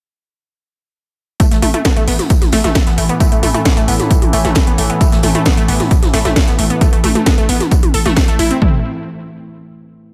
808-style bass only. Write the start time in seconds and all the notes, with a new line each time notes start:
1.51 A1
1.62 A1
1.97 A1
2.07 A1
2.42 A1
2.53 A1
2.64 A1
2.87 A1
2.98 A1
3.32 A1
3.43 A1
3.77 A1
3.88 A1
4.22 A1
4.33 A1
4.45 A1
4.67 A1
4.78 A1
5.12 A1
5.23 A1
5.57 A1
5.68 A1
6.03 A1
6.14 A1
6.25 A1
6.48 A1
6.59 A1
6.93 A1
7.04 A1
7.38 A1
7.49 A1
7.83 A1
7.94 A1
8.06 A1
8.28 A1
8.39 A1
8.62 A1